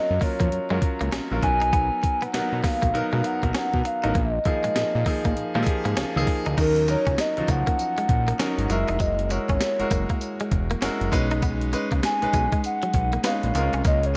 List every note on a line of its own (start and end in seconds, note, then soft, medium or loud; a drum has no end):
0.00 0.10 F#3 medium
0.00 0.11 C#4 medium
0.00 0.11 F4 medium
0.00 0.11 A#4 medium
0.00 0.24 D#5 loud
0.11 0.19 F#2 loud
0.21 0.57 F#3 medium
0.21 0.35 A#3 medium
0.21 0.58 C#4 medium
0.21 0.58 F4 medium
0.21 0.58 A#4 medium
0.21 0.83 C#5 medium
0.21 kick loud
0.21 open hi-hat medium
0.40 0.49 F2 medium
0.40 0.49 A#3 medium
0.40 kick medium
0.40 closed hi-hat medium
0.52 0.60 F#2 soft
0.52 closed hi-hat medium
0.70 0.80 F#2 loud
0.70 1.14 F#3 medium
0.70 0.79 G#3 medium
0.70 1.14 C#4 medium
0.70 1.14 F4 medium
0.70 1.14 A#4 medium
0.82 muted clean electric guitar stroke soft
0.82 kick medium
0.82 closed hi-hat medium
1.01 1.10 C#2 medium
1.01 1.09 A#3 medium
1.01 closed hi-hat soft
1.12 1.20 A#1 soft
1.12 1.27 C#4 medium
1.12 snare loud
1.12 closed hi-hat medium
1.31 1.40 A#1 medium
1.31 1.41 F#3 medium
1.31 1.43 C#4 medium
1.31 1.43 F4 medium
1.31 1.43 A#4 medium
1.43 1.90 B1 medium
1.43 2.18 F#3 medium
1.43 2.19 B3 medium
1.43 2.19 D#4 medium
1.43 2.19 A#4 medium
1.43 2.25 G#5 loud
1.43 muted clean electric guitar stroke soft
1.43 kick medium
1.43 closed hi-hat medium
1.62 1.70 D#4 medium
1.62 closed hi-hat soft
1.73 1.87 B3 medium
1.73 kick loud
1.73 closed hi-hat medium
2.03 muted clean electric guitar stroke soft
2.03 kick medium
2.03 closed hi-hat medium
2.22 2.27 B2 soft
2.22 2.31 B3 medium
2.22 2.67 F#5 loud
2.22 closed hi-hat medium
2.34 2.42 B2 medium
2.34 2.84 F#3 medium
2.34 2.84 B3 medium
2.34 2.84 D#4 medium
2.34 2.84 A#4 medium
2.34 muted clean electric guitar stroke soft
2.34 snare loud
2.34 closed hi-hat medium
2.53 2.62 B2 medium
2.64 2.78 A#3 medium
2.64 3.27 F5 loud
2.64 kick medium
2.64 snare medium
2.64 open hi-hat medium
2.82 2.92 B1 medium
2.82 2.91 A#3 medium
2.82 kick medium
2.82 closed hi-hat medium
2.94 3.02 B2 medium
2.94 3.30 F#3 medium
2.94 3.30 B3 medium
2.94 3.30 D#4 medium
2.94 3.30 A#4 loud
2.94 closed hi-hat medium
3.13 3.22 B2 loud
3.13 3.21 G#3 medium
3.24 3.55 F#5 loud
3.24 muted clean electric guitar stroke soft
3.24 closed hi-hat medium
3.43 3.52 B1 loud
3.43 3.86 F#3 medium
3.43 3.52 A#3 medium
3.43 3.86 B3 medium
3.43 3.86 D#4 medium
3.43 3.87 A#4 medium
3.43 kick medium
3.43 closed hi-hat medium
3.54 3.69 C#4 medium
3.54 3.88 F#5 loud
3.54 snare loud
3.54 closed hi-hat medium
3.74 3.83 B2 medium
3.74 kick medium
3.85 4.18 F5 medium
3.85 muted clean electric guitar stroke soft
3.85 closed hi-hat medium
4.03 4.13 A1 medium
4.03 4.15 F#3 medium
4.03 4.15 B3 medium
4.03 4.12 D#4 medium
4.03 4.15 D#4 medium
4.03 4.15 A#4 medium
4.03 closed hi-hat soft
4.15 4.39 A#1 loud
4.15 4.29 A#3 medium
4.15 6.28 D#5 loud
4.15 kick loud
4.15 closed hi-hat medium
4.45 4.95 F3 medium
4.45 4.96 A#3 medium
4.45 4.96 D#4 medium
4.45 4.96 G#4 medium
4.45 muted clean electric guitar stroke soft
4.45 kick medium
4.45 closed hi-hat medium
4.64 4.69 A#2 soft
4.64 4.73 G#3 medium
4.64 closed hi-hat medium
4.76 4.84 A#2 soft
4.76 muted clean electric guitar stroke soft
4.76 snare loud
4.76 closed hi-hat medium
4.95 5.04 A#2 medium
5.06 5.42 F3 medium
5.06 5.20 A#3 medium
5.06 5.42 A#3 medium
5.06 5.43 D#4 medium
5.06 5.43 G#4 loud
5.06 kick medium
5.06 open hi-hat medium
5.25 5.34 A#1 medium
5.25 5.34 A#3 medium
5.25 kick medium
5.25 closed hi-hat medium
5.37 5.44 A#2 soft
5.37 closed hi-hat medium
5.55 5.65 A#2 loud
5.55 5.98 F3 loud
5.55 5.64 G#3 medium
5.55 5.99 A#3 medium
5.55 5.99 D#4 medium
5.55 5.61 G4 medium
5.63 6.02 G#4 loud
5.63 muted clean electric guitar stroke soft
5.63 kick medium
5.63 closed hi-hat medium
5.85 5.95 G#2 medium
5.85 5.94 A#3 medium
5.85 closed hi-hat soft
5.97 6.05 C#2 soft
5.97 6.11 C#4 medium
5.97 snare loud
5.97 closed hi-hat medium
6.16 6.25 C#2 medium
6.16 6.50 F3 medium
6.16 6.50 A#3 medium
6.16 6.50 D#4 medium
6.16 6.50 G#4 loud
6.27 muted clean electric guitar stroke soft
6.27 kick medium
6.27 open hi-hat medium
6.46 6.55 D2 medium
6.46 6.55 D#4 medium
6.46 closed hi-hat soft
6.58 6.96 D#2 loud
6.58 6.83 F#3 medium
6.58 6.83 C#4 medium
6.58 6.72 D#4 medium
6.58 6.83 D#4 medium
6.58 6.83 A#4 medium
6.58 6.87 A#4 loud
6.58 kick loud
6.58 closed hi-hat medium
6.58 crash loud
6.58 tambourine medium
6.76 closed hi-hat medium
6.88 7.24 F#3 medium
6.88 7.24 C#4 medium
6.88 7.25 D#4 medium
6.88 7.25 A#4 medium
6.88 7.22 C#5 loud
6.88 muted clean electric guitar stroke soft
6.88 closed hi-hat medium
6.88 tambourine medium
7.07 7.16 C#2 medium
7.07 7.15 C#4 medium
7.07 kick loud
7.07 closed hi-hat medium
7.18 7.50 D#5 loud
7.18 muted clean electric guitar stroke soft
7.18 snare loud
7.18 closed hi-hat medium
7.18 tambourine medium
7.37 7.42 C#2 soft
7.37 8.17 F3 medium
7.37 8.16 F#3 medium
7.37 8.17 C#4 medium
7.37 8.17 D#4 medium
7.37 closed hi-hat soft
7.48 7.63 C#2 medium
7.48 7.63 A#3 medium
7.48 8.66 F#5 loud
7.48 kick medium
7.48 closed hi-hat medium
7.48 tambourine medium
7.67 7.76 A#3 medium
7.67 kick medium
7.67 closed hi-hat medium
7.79 closed hi-hat medium
7.79 tambourine medium
7.98 8.06 G#3 medium
7.98 closed hi-hat medium
8.09 8.33 A#1 loud
8.09 muted clean electric guitar stroke soft
8.09 kick medium
8.09 closed hi-hat medium
8.28 8.37 A#3 medium
8.28 closed hi-hat soft
8.39 8.70 F#3 medium
8.39 8.54 C#4 medium
8.39 8.70 C#4 medium
8.39 8.70 D#4 medium
8.39 8.69 A#4 loud
8.39 snare loud
8.39 closed hi-hat medium
8.39 tambourine medium
8.58 8.67 G#1 medium
8.58 closed hi-hat medium
8.66 9.21 G#3 medium
8.66 8.73 F#5 medium
8.70 8.85 F#1 loud
8.70 9.21 E4 medium
8.70 9.21 F#4 medium
8.70 9.22 A#4 loud
8.70 9.03 E5 loud
8.70 muted clean electric guitar stroke soft
8.70 closed hi-hat medium
8.70 tambourine medium
8.88 8.98 F1 medium
8.88 8.97 D#4 medium
8.88 closed hi-hat medium
9.00 9.39 F#1 loud
9.00 9.14 F#3 medium
9.00 9.26 D#5 loud
9.00 kick loud
9.00 closed hi-hat medium
9.00 tambourine medium
9.19 closed hi-hat medium
9.26 9.66 G#3 medium
9.26 9.33 D#5 medium
9.30 9.67 E4 medium
9.30 9.67 F#4 medium
9.30 9.67 A#4 medium
9.30 10.22 C#5 loud
9.30 muted clean electric guitar stroke soft
9.30 closed hi-hat medium
9.30 tambourine medium
9.49 9.58 G#1 medium
9.49 9.58 C#4 medium
9.49 kick loud
9.49 closed hi-hat medium
9.61 muted clean electric guitar stroke soft
9.61 snare loud
9.61 closed hi-hat medium
9.61 tambourine loud
9.79 9.84 F#1 soft
9.79 10.59 G#3 medium
9.79 10.59 E4 medium
9.79 10.59 F#4 medium
9.79 10.59 A#4 medium
9.79 closed hi-hat medium
9.91 10.06 F#1 medium
9.91 10.05 A#3 medium
9.91 kick medium
9.91 closed hi-hat medium
9.91 tambourine medium
10.10 10.19 A#3 medium
10.10 kick medium
10.10 closed hi-hat medium
10.21 closed hi-hat medium
10.21 tambourine medium
10.40 10.49 G#3 medium
10.40 closed hi-hat medium
10.52 10.76 E1 loud
10.52 muted clean electric guitar stroke soft
10.52 kick medium
10.52 closed hi-hat medium
10.71 10.79 A#3 medium
10.71 closed hi-hat soft
10.81 10.90 F#1 soft
10.81 11.10 G#3 medium
10.81 10.96 C#4 medium
10.81 11.12 E4 medium
10.81 11.12 F#4 medium
10.81 11.12 A#4 loud
10.81 snare loud
10.81 closed hi-hat medium
10.81 tambourine medium
11.01 11.10 F#1 medium
11.01 closed hi-hat soft
11.12 11.75 B1 medium
11.12 11.63 G#3 loud
11.12 11.64 C#4 medium
11.12 11.64 D#4 medium
11.12 11.64 B4 loud
11.12 muted clean electric guitar stroke soft
11.12 kick medium
11.12 closed hi-hat medium
11.12 tambourine medium
11.31 11.40 D#4 medium
11.31 closed hi-hat soft
11.42 11.57 B3 medium
11.42 kick loud
11.42 closed hi-hat medium
11.42 tambourine medium
11.61 closed hi-hat medium
11.73 12.09 G#3 medium
11.73 12.09 C#4 medium
11.73 12.09 D#4 medium
11.73 12.09 B4 loud
11.73 muted clean electric guitar stroke medium
11.73 closed hi-hat medium
11.73 tambourine medium
11.92 12.01 C#2 loud
11.92 12.00 A#3 medium
11.92 kick loud
11.92 closed hi-hat medium
12.03 12.60 G#5 loud
12.03 muted clean electric guitar stroke soft
12.03 snare loud
12.03 closed hi-hat medium
12.03 tambourine medium
12.22 12.27 B1 medium
12.22 13.01 G#3 medium
12.22 13.01 C#4 medium
12.22 13.02 D#4 medium
12.22 13.02 B4 medium
12.22 closed hi-hat soft
12.33 12.48 B1 loud
12.33 12.48 G#3 medium
12.33 kick medium
12.33 closed hi-hat medium
12.33 tambourine medium
12.52 12.61 G#3 medium
12.52 kick medium
12.52 closed hi-hat medium
12.64 13.21 F#5 loud
12.64 closed hi-hat medium
12.64 tambourine medium
12.82 12.91 F#3 medium
12.82 closed hi-hat medium
12.94 13.18 B1 medium
12.94 muted clean electric guitar stroke soft
12.94 kick medium
12.94 closed hi-hat medium
13.13 13.22 A#3 medium
13.13 closed hi-hat soft
13.24 13.53 G#3 medium
13.24 13.39 B3 medium
13.24 13.55 C#4 medium
13.24 13.55 D#4 medium
13.24 13.55 B4 medium
13.24 13.82 F5 loud
13.24 snare loud
13.24 closed hi-hat medium
13.24 tambourine medium
13.43 13.53 A#1 medium
13.43 closed hi-hat medium
13.54 13.70 C#2 loud
13.54 14.06 G#3 medium
13.54 13.63 C4 medium
13.54 14.06 F4 medium
13.54 14.07 A#4 medium
13.54 muted clean electric guitar stroke medium
13.54 closed hi-hat medium
13.54 tambourine medium
13.61 14.09 C#4 medium
13.73 13.83 C2 medium
13.73 13.82 C#4 medium
13.73 closed hi-hat soft
13.85 14.17 C#2 loud
13.85 13.99 A#3 medium
13.85 14.08 D#5 loud
13.85 kick loud
13.85 closed hi-hat medium
13.85 tambourine medium
14.03 14.16 C#5 medium
14.03 closed hi-hat medium